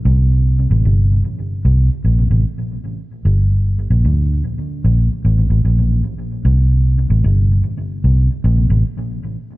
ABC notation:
X:1
M:4/4
L:1/16
Q:"Swing 16ths" 1/4=75
K:Gdor
V:1 name="Fingered electric bass" clef=bass
C,,3 A,,, G,,,2 z2 C,, z B,,, A,,, z4 | G,,,3 B,,, D,,2 z2 B,,, z A,,, A,,, B,,,2 z2 | C,,3 A,,, G,,,2 z2 C,, z B,,, A,,, z4 |]